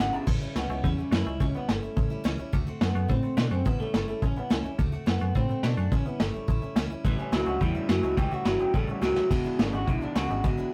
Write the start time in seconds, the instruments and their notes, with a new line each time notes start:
Already playing: clean electric guitar F#5
0.00 fm bass G#1, steel-string acoustic guitar E2 B2 E3 G#3 D4 E4, clean electric guitar C#3
0.13 fm bass G#1, steel-string acoustic guitar E3 G#3 D4 E4, clean electric guitar A5
0.27 fm bass A1, steel-string acoustic guitar A2 E3 G3 C#4 E4, kick, crash
0.42 fm bass A1, steel-string acoustic guitar G3 C#4 E4
0.55 fm bass C#2, steel-string acoustic guitar A2 E3 G3 C#4 E4, clean electric guitar B3, snare
0.69 fm bass C#2, steel-string acoustic guitar G3 C#4 E4
0.84 fm bass E2, steel-string acoustic guitar E3 G3 C#4 E4, clean electric guitar C#4, kick, open hi-hat
0.98 fm bass E2, steel-string acoustic guitar G3 C#4 E4
1.11 fm bass F#2, steel-string acoustic guitar A2 E3 G3 C#4 E4, clean electric guitar E4, snare, open hi-hat
1.26 fm bass C#2, steel-string acoustic guitar G3 C#4 E4
1.40 fm bass C#2, steel-string acoustic guitar A2 E3 G3 C#4 E4, clean electric guitar C#4, kick, open hi-hat
1.54 fm bass C#2, steel-string acoustic guitar G3 C#4 E4, clean electric guitar B3
1.69 fm bass G1, steel-string acoustic guitar A2 E3 G3 C#4 E4, clean electric guitar A3, snare, open hi-hat
1.83 fm bass G1, steel-string acoustic guitar G3 C#4 E4
1.96 fm bass A1, steel-string acoustic guitar E3 G3 C#4 E4, kick, open hi-hat
2.10 fm bass A1, steel-string acoustic guitar G3 C#4 E4
2.24 fm bass C#2, steel-string acoustic guitar A2 E3 G3 C#4 E4, snare, open hi-hat
2.38 fm bass C#2, steel-string acoustic guitar G3 C#4 E4
2.53 fm bass D2, steel-string acoustic guitar D3 A3 C4 F#4, kick, open hi-hat
2.67 fm bass D2, steel-string acoustic guitar A3 C4 F#4
2.81 fm bass F#2, steel-string acoustic guitar D3 A3 C4 F#4, clean electric guitar B3, snare
2.95 fm bass F#2, steel-string acoustic guitar A3 C4 F#4
3.08 fm bass A2, steel-string acoustic guitar D3 A3 C4 F#4, clean electric guitar C4, kick, open hi-hat
3.23 fm bass A2, steel-string acoustic guitar A3 C4 F#4
3.37 fm bass B2, steel-string acoustic guitar D3 A3 C4 F#4, clean electric guitar D4, snare
3.51 fm bass F#2, steel-string acoustic guitar A3 C4 F#4, clean electric guitar C4
3.65 fm bass A1, steel-string acoustic guitar A2 E3 G3 C#4 E4, clean electric guitar B3, kick, open hi-hat
3.80 fm bass A1, steel-string acoustic guitar G3 C#4 E4, clean electric guitar A3
3.94 fm bass G1, steel-string acoustic guitar A2 E3 G3 C#4 E4, snare
4.08 fm bass G1, steel-string acoustic guitar G3 C#4 E4, clean electric guitar A3
4.22 fm bass A1, steel-string acoustic guitar E3 G3 C#4 E4, clean electric guitar C#4, kick, open hi-hat
4.36 fm bass A1, steel-string acoustic guitar G3 C#4 E4, clean electric guitar B3
4.50 fm bass C#2, steel-string acoustic guitar A2 E3 G3 C#4 E4, clean electric guitar C#4, snare, open hi-hat
4.64 fm bass C#2, steel-string acoustic guitar G3 C#4 E4
4.79 fm bass D2, steel-string acoustic guitar D3 A3 C4 F#4, kick, open hi-hat
4.92 fm bass D2, steel-string acoustic guitar A3 C4 F#4
5.06 fm bass F#2, steel-string acoustic guitar D3 A3 C4 F#4, clean electric guitar B3, snare
5.20 fm bass F#2, steel-string acoustic guitar A3 C4 F#4
5.35 fm bass A2, steel-string acoustic guitar D3 A3 C4 F#4, clean electric guitar C4, kick, open hi-hat
5.49 fm bass A2, steel-string acoustic guitar A3 C4 F#4
5.63 fm bass B2, steel-string acoustic guitar D3 A3 C4 F#4, clean electric guitar D4, snare, open hi-hat
5.77 fm bass F#2, steel-string acoustic guitar A3 C4 F#4
5.92 fm bass A1, steel-string acoustic guitar A2 E3 G3 C#4 E4, clean electric guitar C#4, kick, open hi-hat
6.05 fm bass A1, steel-string acoustic guitar G3 C#4 E4, clean electric guitar B3
6.20 fm bass G1, steel-string acoustic guitar A2 E3 G3 C#4 E4, clean electric guitar A3, snare, open hi-hat
6.34 fm bass G1, steel-string acoustic guitar G3 C#4 E4
6.48 fm bass A1, steel-string acoustic guitar E3 G3 C#4 E4, kick, open hi-hat
6.62 fm bass A1, steel-string acoustic guitar G3 C#4 E4
6.76 fm bass C#2, steel-string acoustic guitar A2 E3 G3 C#4 E4, snare
6.90 fm bass C#2, steel-string acoustic guitar G3 C#4 E4
7.05 fm bass A1, steel-string acoustic guitar A2 E3 G3 C#4 E4, kick, open hi-hat
7.18 fm bass A1, steel-string acoustic guitar G3 C#4 E4, clean electric guitar C#4
7.32 fm bass C#2, steel-string acoustic guitar A2 E3 G3 C#4 E4, clean electric guitar F#3 E4, snare, open hi-hat
7.46 fm bass C#2, steel-string acoustic guitar G3 C#4 E4, clean electric guitar F#4
7.60 fm bass E2, clean electric guitar A2 E4, steel-string acoustic guitar E3 G3 C#4 E4, kick, open hi-hat
7.74 fm bass E2, steel-string acoustic guitar G3 C#4 E4
7.89 fm bass F#2, steel-string acoustic guitar A2 E3 G3 C#4 E4, clean electric guitar F#3, snare, open hi-hat
8.03 fm bass C#2, steel-string acoustic guitar G3 C#4 E4
8.17 fm bass C#2, steel-string acoustic guitar A2 E3 G3 C#4 E4, clean electric guitar G4, kick, open hi-hat
8.31 fm bass C#2, steel-string acoustic guitar G3 C#4 E4, clean electric guitar F#4
8.45 fm bass G1, steel-string acoustic guitar A2 E3 G3 C#4 E4, clean electric guitar F#3 E4, snare
8.59 fm bass G1, steel-string acoustic guitar G3 C#4 E4, clean electric guitar G4
8.74 fm bass A1, clean electric guitar A2 A4, steel-string acoustic guitar E3 G3 C#4 E4, kick, open hi-hat
8.87 fm bass A1, steel-string acoustic guitar G3 C#4 E4, clean electric guitar F#4
9.02 fm bass C#2, steel-string acoustic guitar A2 E3 G3 C#4 E4, clean electric guitar F#3 G4, snare
9.16 fm bass C#2, steel-string acoustic guitar G3 C#4 E4, snare
9.31 fm bass E1, steel-string acoustic guitar E2 B2 E3 G#3 D4 E4, kick, open hi-hat, crash
9.44 fm bass E1, steel-string acoustic guitar E3 G#3 D4 E4
9.59 fm bass G#1, steel-string acoustic guitar E2 B2 E3 G#3 D4 E4, clean electric guitar C#3 D4, snare, open hi-hat
9.73 fm bass G#1, steel-string acoustic guitar E3 G#3 D4 E4, clean electric guitar F#4
9.87 fm bass B1, clean electric guitar E2 D3 E4, steel-string acoustic guitar E3 G#3 D4 E4, kick, open hi-hat
10.01 fm bass B1, steel-string acoustic guitar E3 G#3 D4 E4, clean electric guitar D4
10.15 fm bass C#2, steel-string acoustic guitar E2 B2 E3 G#3 D4 E4, clean electric guitar C#3 F#4, snare, open hi-hat
10.30 fm bass G#1, steel-string acoustic guitar E3 G#3 D4 E4
10.44 fm bass G#1, steel-string acoustic guitar E2 B2 E3 G#3 D4 E4, kick, open hi-hat
10.57 fm bass G#1, steel-string acoustic guitar E3 G#3 D4 E4